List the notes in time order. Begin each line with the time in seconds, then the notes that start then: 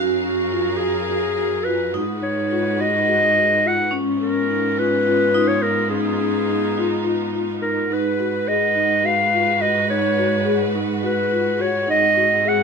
Already playing: F#2 F#3 C#4 F#4 G#4 A#4 F5
0.24 C#4 F#4
0.52 F4
0.77 F#4 G#4
1.10 F#4
1.38 F#4
1.64 F4 B4
1.93 G#2 G#3 D#4 F#4 B4
2.22 D#4 C#5
2.51 F4
2.79 F#4 D#5
3.08 F#4
3.36 F#4
3.65 F4 F#5
3.91 G#2 B3 C#4 F4
4.20 C#4 A#4
4.49 D#4
4.78 F4 B4
5.07 F4
5.34 D#4 F4
5.48 C#5
5.62 D#4 A#4
5.90 C#4 D#4 G#4
6.20 C#4
6.48 D#4
6.78 F4
7.05 F4
7.34 F4
7.62 D#4 A#4
7.89 G#2 G#3 D#4 F#4 B4
7.93 B4
8.19 F#4
8.47 G#4 D#5
8.75 D#4
9.03 F#4 F5
9.33 F4
9.61 F#4 D#5
9.90 D#4 C#5
10.18 F#4
10.45 G#4
10.75 D#4
11.03 F#4 B4
11.32 F4
11.60 F#4 C#5
11.87 G#2 C4 D#4 D#5
12.16 F#4
12.45 G#4 F#5